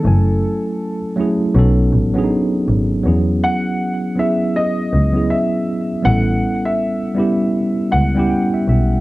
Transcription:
Already playing: upright piano A4
0.03 double bass F#1, tine electric piano F#3 A3 C#4 E4
0.07 tine electric piano G#5
1.16 tine electric piano F#3 A3 C#4 E4
1.21 tine electric piano G#4
1.54 double bass B1, tine electric piano F#3 B3 C#4 D#4
1.59 tine electric piano A4
1.93 double bass A1
2.14 tine electric piano F#3 B3 C#4 D4
2.18 tine electric piano G#4
2.24 tine electric piano D#4
2.68 double bass G#1
3.03 double bass E2, tine electric piano F#3 B3 C#4 E4
3.08 tine electric piano G#4
3.44 upright piano F#5
4.15 tine electric piano F#3 B3 C#4 E4
4.19 tine electric piano G#4, upright piano E5
4.56 upright piano D#5
4.93 double bass C#2
5.12 tine electric piano F#3 B3 C#4 E4
5.17 tine electric piano G#4
5.30 upright piano E5
6.02 double bass A1, tine electric piano G3 B3 C#4 E4, upright piano F#5
6.07 tine electric piano A4
6.65 upright piano E5
7.15 tine electric piano G3 B3 C#4 E4
7.19 tine electric piano G4
7.91 double bass C#2, tine electric piano F#5, upright piano F#5
8.15 tine electric piano G3 B3 C#4 E4 G5
8.19 tine electric piano G4
8.30 tine electric piano G5
8.54 tine electric piano E5
8.68 double bass B1, tine electric piano E5

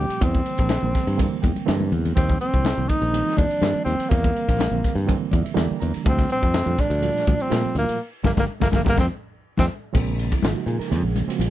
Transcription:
Already playing: reed electric piano A#2 F3 G3 A3 C4, tenor saxophone G4
0.09 muted fingered electric bass stroke, ride
0.21 fingered electric bass E2, reed electric piano D3 E3 G3 A#3 C4, tenor saxophone C4, kick, ride, muted conga
0.35 kick
0.46 hi-hat pedal, ride, muted conga
0.58 fingered electric bass A#1, kick, ride
0.69 snare, ride, high conga
0.81 fingered electric bass A#1, reed electric piano D3 E3 G3 A#3 C4
0.95 kick, snare, hi-hat pedal, ride
1.07 fingered electric bass G2, ride
1.17 reed electric piano D3 E3 G3 A#3 C4, kick, ride
1.42 fingered electric bass E2, reed electric piano G5, kick, hi-hat pedal, ride, high conga
1.56 muted fingered electric bass stroke, ride, high conga
1.66 fingered electric bass G2, reed electric piano D3 E3 G3 A#3 C4 E5, snare, ride, high conga
1.80 high conga
1.92 fingered electric bass E2, hi-hat pedal, ride, low conga
2.05 ride, low conga
2.15 fingered electric bass D#2, reed electric piano D#3 F3 G3 A#3 C4, tenor saxophone C4, kick, ride
2.29 kick
2.41 tenor saxophone C4, hi-hat pedal, ride, muted conga
2.54 fingered electric bass C2, kick
2.65 snare, ride, high conga
2.77 fingered electric bass C2, reed electric piano D#3 F3 G3 A#3 C4
2.89 tenor saxophone D#4, kick, hi-hat pedal, ride
3.02 fingered electric bass A#1, ride
3.13 reed electric piano D#3 F3 G3 A#3 C4, ride, muted conga
3.28 snare
3.37 fingered electric bass D#2, tenor saxophone D4, kick, hi-hat pedal, ride, high conga
3.50 muted fingered electric bass stroke, ride
3.61 fingered electric bass G2, reed electric piano D#3 F3 G3 A#3 C4, snare, ride, high conga
3.74 muted fingered electric bass stroke
3.85 fingered electric bass D#2, tenor saxophone C4, hi-hat pedal, ride, muted conga
3.99 muted fingered electric bass stroke, ride
4.09 fingered electric bass E2, reed electric piano D3 E3 G3 A#3 C4, tenor saxophone A#3, kick, ride, muted conga
4.24 kick
4.35 hi-hat pedal, ride, muted conga
4.48 fingered electric bass A#1, kick, ride
4.59 snare, ride, high conga
4.71 fingered electric bass A#1, reed electric piano D3 E3 G3 A#3 C4
4.84 kick, snare, hi-hat pedal, ride
4.95 fingered electric bass G2, ride
5.07 reed electric piano D3 E3 G3 A#3 C4, kick, ride, muted conga
5.31 fingered electric bass E2, reed electric piano D5, kick, hi-hat pedal, ride, high conga
5.44 reed electric piano E5, muted fingered electric bass stroke, ride
5.54 fingered electric bass E2, reed electric piano D3 E3 G3 A#3 D4 G5, snare, ride, high conga
5.71 muted fingered electric bass stroke
5.80 fingered electric bass E2, reed electric piano A#5, hi-hat pedal, ride
5.94 muted fingered electric bass stroke, ride
6.04 fingered electric bass D2, reed electric piano A#2 F3 G3 A3 D4, kick, ride, muted conga
6.08 tenor saxophone C4
6.19 kick, snare
6.29 tenor saxophone C4, hi-hat pedal, ride, muted conga
6.42 fingered electric bass F2, kick
6.54 snare, ride, high conga
6.65 fingered electric bass F2, reed electric piano A#2 F3 G3 A3 D4
6.78 tenor saxophone D4, kick, snare, hi-hat pedal, ride
6.90 fingered electric bass D2, ride
7.02 reed electric piano A#2 F3 G3 A3 F4, ride
7.16 snare
7.27 fingered electric bass D2, kick, hi-hat pedal, ride, high conga
7.39 tenor saxophone C4, muted fingered electric bass stroke, ride
7.50 reed electric piano A#2 F3 G3 A3 F4, fingered electric bass A#2, snare, ride, high conga
7.65 muted fingered electric bass stroke
7.75 fingered electric bass D2, tenor saxophone A#3, hi-hat pedal, ride
7.89 muted fingered electric bass stroke, ride
8.23 fingered electric bass G1, reed electric piano F3 G3 A#3, tenor saxophone A#3, kick, snare, high conga
8.36 fingered electric bass G1, reed electric piano F3 G3 A#3, tenor saxophone A#3, kick, snare, high conga
8.60 fingered electric bass G1, reed electric piano F3 G3 A#3, tenor saxophone A#3, kick, snare, high conga
8.72 fingered electric bass G1, reed electric piano F3 G3 A#3, tenor saxophone A#3, kick, snare, high conga
8.85 fingered electric bass G1, reed electric piano F3 G3 A#3, kick, snare, high conga
8.89 tenor saxophone A#3
8.96 fingered electric bass F2, reed electric piano D#3 F3 A3, kick, snare, high conga
9.00 tenor saxophone C4
9.58 fingered electric bass F2, reed electric piano D#3 F3 A3, tenor saxophone C4, kick, snare, high conga
9.93 fingered electric bass A#1, reed electric piano C#3 F3 G#3 A#3 C4, kick, crash, muted conga
10.18 hi-hat pedal, ride, muted conga
10.32 reed electric piano E4, kick, ride
10.42 fingered electric bass G#1, reed electric piano C#3 F3 G#3 A#3 D#4 F4, snare, hi-hat pedal, ride, high conga
10.56 reed electric piano F#4
10.66 fingered electric bass A#2, reed electric piano G#4, hi-hat pedal, ride
10.79 reed electric piano A#4, muted fingered electric bass stroke, snare, ride
10.90 fingered electric bass F2, reed electric piano C#3 F3 G#3 A#3 C#4 G#4, hi-hat pedal, ride
11.03 fingered electric bass A#1
11.16 hi-hat pedal, ride, high conga
11.28 reed electric piano C#3 F3 G#3 A#3 C4 F#4, muted fingered electric bass stroke, ride
11.39 fingered electric bass A#1, reed electric piano F4, hi-hat pedal, ride, high conga

